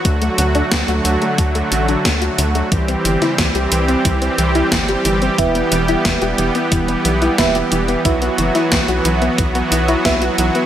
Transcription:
Already playing: F#4
0.05 D2 D3 F#3 A3, kick, closed hi-hat
0.22 A3, closed hi-hat
0.38 D2 D3, closed hi-hat
0.55 D4, closed hi-hat
0.72 D2 D3, kick, snare, closed hi-hat
0.88 D2 F#4, closed hi-hat
1.05 D2 D3, closed hi-hat
1.22 A3, closed hi-hat
1.38 D2 D3, kick, closed hi-hat
1.55 A3, closed hi-hat
1.72 A1 D3, closed hi-hat
1.88 D4, closed hi-hat
2.05 D2 D3, kick, snare, closed hi-hat
2.22 F#4, closed hi-hat
2.38 D2 D3, closed hi-hat
2.55 A3, closed hi-hat
2.72 C2 E3 G3 C4 G4, kick, closed hi-hat
2.88 C4, closed hi-hat
3.05 G1 E3, closed hi-hat
3.22 E4, snare, closed hi-hat, mid tom
3.38 C2 E3, kick, snare, closed hi-hat
3.55 C2 G4, closed hi-hat
3.72 C2 E3, closed hi-hat
3.88 C4, closed hi-hat
4.05 C2 E3, kick, closed hi-hat
4.22 C4, closed hi-hat
4.38 C2 E3, closed hi-hat
4.55 E4, closed hi-hat
4.72 G1 E3, kick, snare, closed hi-hat
4.88 G4, closed hi-hat
5.05 G1 E3, closed hi-hat
5.22 C4, closed hi-hat
5.38 E1 E3 B3 E4 G4 B4 E5, kick, closed hi-hat
5.55 B3, closed hi-hat
5.72 E1 E3, closed hi-hat
5.88 E4, closed hi-hat
6.05 E1 E3, kick, snare, closed hi-hat
6.22 E1 G4, closed hi-hat
6.38 E1 E3, closed hi-hat
6.55 B3, closed hi-hat
6.72 E1 E3, kick, closed hi-hat
6.88 B3, closed hi-hat
7.05 B1 E3, closed hi-hat
7.22 E4, closed hi-hat
7.38 E1 E3 B3 E4 G4 B4 E5, kick, snare, closed hi-hat
7.55 G4, closed hi-hat
7.72 E1 E3, closed hi-hat
7.88 B3, closed hi-hat
8.05 B1 E3 F#3 B3 E4 F#4 B4 E5, kick, closed hi-hat
8.22 B3, closed hi-hat
8.38 F#1 E3, closed hi-hat
8.55 E4, snare, closed hi-hat
8.72 B1 E3, kick, snare, closed hi-hat
8.88 B1 F#4, closed hi-hat
9.05 B1 E3, closed hi-hat
9.22 B3, closed hi-hat
9.38 B1 E3, kick, closed hi-hat
9.55 B3, closed hi-hat
9.72 B1 E3, closed hi-hat
9.88 E4, closed hi-hat
10.05 B1 E3 B3 E4 F#4 B4 E5, kick, snare, closed hi-hat
10.22 F#4, closed hi-hat
10.38 B1 E3, closed hi-hat
10.55 B3, closed hi-hat

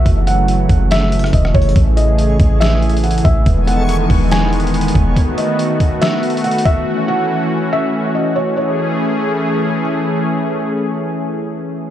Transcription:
0.06 F#1 C#3 E3 F#3 A3, kick, closed hi-hat
0.27 F#5, closed hi-hat
0.48 closed hi-hat
0.69 F#1, kick, closed hi-hat
0.91 E5, snare, closed hi-hat
1.12 closed hi-hat
1.19 closed hi-hat
1.24 cross-stick, closed hi-hat
1.33 E1 D#5, kick, closed hi-hat
1.45 cross-stick
1.54 F#1 C#5, kick, closed hi-hat
1.62 closed hi-hat
1.69 closed hi-hat
1.76 A1 A3 G#4 C#5, kick, closed hi-hat
1.97 D#5, closed hi-hat
2.18 closed hi-hat
2.40 A1, kick, closed hi-hat
2.60 E5, snare, closed hi-hat
2.82 closed hi-hat
2.90 closed hi-hat
2.97 closed hi-hat
3.04 F#5, closed hi-hat
3.11 closed hi-hat
3.18 closed hi-hat
3.25 A1 E5, kick, closed hi-hat
3.46 E1 D#3 G#3 B3, kick, closed hi-hat
3.67 F#5, closed hi-hat
3.89 closed hi-hat
4.10 E1, kick, open hi-hat
4.31 G#5, snare, closed hi-hat
4.53 closed hi-hat
4.60 closed hi-hat
4.67 closed hi-hat
4.74 closed hi-hat
4.81 closed hi-hat
4.88 closed hi-hat
4.95 E1, kick, closed hi-hat
5.16 A3 F#4, kick, closed hi-hat
5.38 D#5, closed hi-hat
5.59 closed hi-hat
5.80 kick, closed hi-hat
6.02 E5, snare, closed hi-hat
6.23 closed hi-hat
6.30 closed hi-hat
6.37 closed hi-hat
6.44 F#5, closed hi-hat
6.51 closed hi-hat
6.58 closed hi-hat
6.65 E5, kick, closed hi-hat
6.86 E3 C#4
7.08 F#5
7.73 E5
8.15 D#5
8.36 C#5
8.57 E3 A3 C#4 G#4 C#5

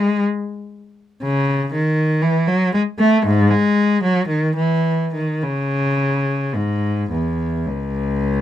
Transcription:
Already playing: G#3
1.23 C#3
1.74 D#3
2.22 E3
2.48 F#3
2.74 G#3
2.99 A3
3.26 G#2
3.51 G#3
4.03 F#3
4.28 D#3
4.57 E3
5.14 D#3
5.43 C#3
6.55 G#2
7.11 E2
7.67 C#2

